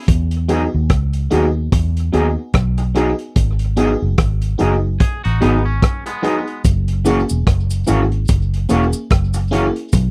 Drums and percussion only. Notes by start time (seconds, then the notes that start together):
0.08 kick, closed hi-hat
0.31 closed hi-hat
0.49 closed hi-hat
0.90 kick, cross-stick, closed hi-hat
1.13 closed hi-hat
1.31 closed hi-hat
1.72 kick, closed hi-hat
1.97 closed hi-hat
2.14 closed hi-hat
2.54 kick, cross-stick, closed hi-hat
2.78 closed hi-hat
2.95 cross-stick, closed hi-hat
3.19 closed hi-hat
3.36 kick, closed hi-hat
3.59 closed hi-hat
3.77 closed hi-hat
4.18 kick, cross-stick, closed hi-hat
4.42 closed hi-hat
4.59 closed hi-hat
5.00 kick, closed hi-hat
5.25 closed hi-hat
5.42 closed hi-hat
5.82 kick, cross-stick, closed hi-hat
6.06 closed hi-hat
6.24 closed hi-hat
6.47 closed hi-hat
6.65 kick, closed hi-hat, cabasa
6.88 closed hi-hat
7.05 closed hi-hat, cabasa
7.29 cabasa
7.47 kick, cross-stick, closed hi-hat
7.70 closed hi-hat, cabasa
7.87 closed hi-hat, cabasa
8.12 closed hi-hat
8.28 kick, closed hi-hat, cabasa
8.54 closed hi-hat
8.69 closed hi-hat, cabasa
8.93 cabasa
9.10 kick, cross-stick, closed hi-hat
9.34 closed hi-hat, cabasa
9.53 closed hi-hat
9.76 closed hi-hat
9.93 kick, closed hi-hat, cabasa